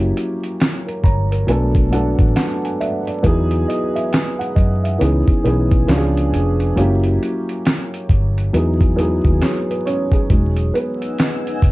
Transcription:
Already playing: F#1 F#3 A#3 C#4 E4 G4
0.17 closed hi-hat
0.44 closed hi-hat
0.60 snare, clap, closed hi-hat
0.87 A#4, closed hi-hat
1.04 G1 C#5 A#5, kick, closed hi-hat
1.31 A#4, closed hi-hat
1.47 B1 F#3 A3 B3 D4 A4 G#5, closed hi-hat
1.75 kick, closed hi-hat
1.91 F#3 A3 B3 D4 A4 F#5, closed hi-hat
2.19 A1, kick, closed hi-hat
2.36 F#5, snare, clap, closed hi-hat
2.64 G#5, closed hi-hat
2.80 D5 E5, closed hi-hat
3.07 D5, closed hi-hat
3.23 E2 F#3 B3 D#4 E4 G#4, kick, closed hi-hat
3.51 closed hi-hat
3.68 D#5, closed hi-hat
3.95 E5, closed hi-hat
4.12 G#5, snare, clap, closed hi-hat
4.39 F#5, closed hi-hat
4.55 F#2 D#5, kick, closed hi-hat
4.84 E5, closed hi-hat
4.98 C#2 E3 B3 C#4 D#4 G#4, closed hi-hat
5.28 muted fingered electric bass stroke, kick, closed hi-hat
5.43 B1 E3 B3 C#4 D#4 G#4, closed hi-hat
5.71 kick, closed hi-hat
5.87 C#2 F3 B3 C#4 D4 F#4, snare, clap, closed hi-hat
5.97 G#4
6.17 closed hi-hat
6.33 F1, closed hi-hat
6.60 closed hi-hat
6.76 F#1 F#3 A#3 C#4 E4 G4, closed hi-hat
7.04 closed hi-hat
7.23 closed hi-hat
7.49 closed hi-hat
7.65 snare, clap, closed hi-hat
7.94 closed hi-hat
8.09 G1, kick, closed hi-hat
8.38 closed hi-hat
8.53 E2 F#3 B3 D#4 E4 G#4, closed hi-hat
8.81 kick, closed hi-hat
8.96 F#3 B3 D#4 E4 G#4, closed hi-hat
9.25 D#2, kick, closed hi-hat
9.42 C#5, snare, clap, closed hi-hat
9.70 B4, closed hi-hat
9.85 C#4 C#5, closed hi-hat
10.12 G#4, kick, closed hi-hat
10.30 E1 F#3 G#3 D#4 F#5 G#5 E6, kick, closed hi-hat, shaker
10.56 closed hi-hat, shaker
10.74 B3 B4, closed hi-hat, shaker
11.02 closed hi-hat, shaker
11.18 snare, clap, closed hi-hat, shaker
11.46 closed hi-hat, shaker
11.62 F#1, kick, closed hi-hat

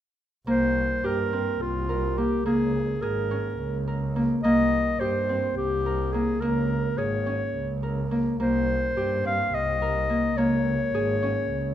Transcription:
0.47 C2 A#3 C5
1.04 G2 G4 A#4
1.33 C4
1.61 C2 F4
1.89 A#4
2.18 A#3 G4
2.46 C#2 A#3 G#4
3.02 G#1 G#4 A#4
3.31 C#4
3.59 C#2
3.88 A#4
4.16 A#3
4.43 C2 A#3 D#5
5.00 G2 G4 C5
5.29 C4
5.56 C2 G4
5.86 A#4
6.12 A#3 G#4
6.41 C#2 A#3 A#4
6.97 G#1 G#4 C#5
7.26 C#4
7.55 C#2
7.83 A#4
8.11 A#3
8.39 C2 A#3 C5
8.97 G2 G4
9.25 C4 F5
9.53 C2 D#5
9.82 A#4
10.10 A#3
10.37 C#2 A#3 C#5
10.94 G#1 G#4
11.23 C#4
11.50 C#2

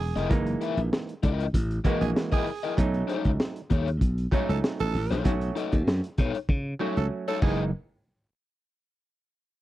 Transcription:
Already playing: G#4
0.00 E1
0.16 F1 E4 A#4 D#5, snare, closed hi-hat
0.30 F#1 E3 G#3 A#3 D#4, kick, closed hi-hat
0.46 closed hi-hat
0.61 E4 A#4 E5, closed hi-hat
0.77 A#1, closed hi-hat
0.93 snare
1.09 closed hi-hat
1.23 C#2 E4 A#4 D#5, kick, closed hi-hat
1.40 closed hi-hat
1.54 A1, kick, closed hi-hat
1.71 closed hi-hat
1.84 E3 G#3 A#3 E4 F#4 A#4 D#5, kick, closed hi-hat
2.01 A#1 G#4, closed hi-hat
2.16 snare
2.32 E4 G#4 A#4 D#5, kick, closed hi-hat
2.47 open hi-hat
2.63 E4 A#4 D#5, closed hi-hat
2.77 B1 F#3 A3 C#4 D#4, kick, closed hi-hat
2.94 closed hi-hat
3.08 D#4 A4 C#5, closed hi-hat
3.25 C#2, kick, closed hi-hat
3.40 snare
3.56 closed hi-hat
3.70 D#2 D#4 A4 C#5, kick, closed hi-hat
3.88 closed hi-hat
4.01 B1, kick, closed hi-hat
4.18 closed hi-hat
4.31 F#3 A3 C#4 D#4 A4 C#5, kick, closed hi-hat
4.49 C#2 A4, closed hi-hat
4.64 snare
4.79 A1 A4, closed hi-hat
4.94 A1, open hi-hat
5.11 A#1 D#4 A4 C#5, snare, closed hi-hat
5.24 B1 F#3 A3 C#4 F#4, kick, closed hi-hat
5.41 closed hi-hat
5.56 D#4 A4 D#5, closed hi-hat
5.72 D#2, kick, closed hi-hat
5.87 F#2, snare
6.04 closed hi-hat
6.18 B2 D#4 A4 C#5, kick, closed hi-hat
6.35 closed hi-hat
6.49 C#3, kick
6.79 F#3 A3 C#4 D#4 F#4 A4 C#5
6.97 C#2 A4
7.28 D#4 A4 C#5
7.42 F#1 E3 G#3 A#3 D#4 E4 G#4 A#4 D#5, kick, crash

